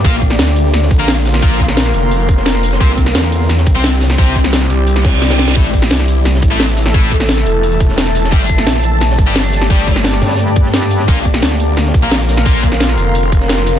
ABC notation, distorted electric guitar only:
X:1
M:4/4
L:1/16
Q:1/4=174
K:Bblyd
V:1 name="Distorted electric guitar"
[B,FB] z8 z2 [B,FB] z4 | [B,FB]2 z12 z2 | [CGc] z8 z2 [CGc] z4 | [CGc]2 z12 z2 |
[A,EA] z8 z2 [A,EA] z4 | [A,EA]2 z12 z2 | [G,DG] z8 z2 [G,DG] z4 | [G,DG]2 z12 z2 |
[B,FB] z8 z2 [B,FB] z4 | [B,FB]2 z12 z2 |]